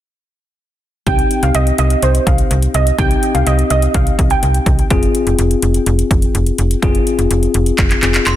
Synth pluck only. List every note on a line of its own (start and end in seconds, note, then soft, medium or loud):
1.07 1.20 G5 loud
1.43 1.50 F5 medium
1.55 1.68 D#5 medium
1.79 1.86 D#5 medium
2.03 2.16 C5 medium
2.27 2.33 F5 medium
2.75 2.81 D#5 medium
2.99 3.12 G5 loud
3.35 3.41 F5 medium
3.47 3.60 D#5 medium
3.71 3.77 D#5 medium
3.95 4.02 F5 medium
4.31 4.38 G5 medium